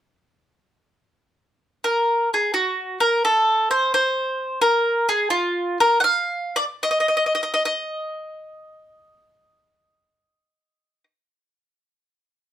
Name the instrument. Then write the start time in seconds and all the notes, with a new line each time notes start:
mandolin
1.84 A#4
2.34 G#4
2.54 F#4
3.00 A#4
3.25 A4
3.71 C5
3.94 C5
4.61 A#4
5.09 G#4
5.30 F4
5.80 A#4
6.00 F5 F#5
6.56 D5
6.83 D#5
6.91 D#5
7.00 D#5
7.08 D#5
7.17 D#5
7.26 D#5
7.35 D#5
7.43 D#5
7.54 D#5
7.65 D#5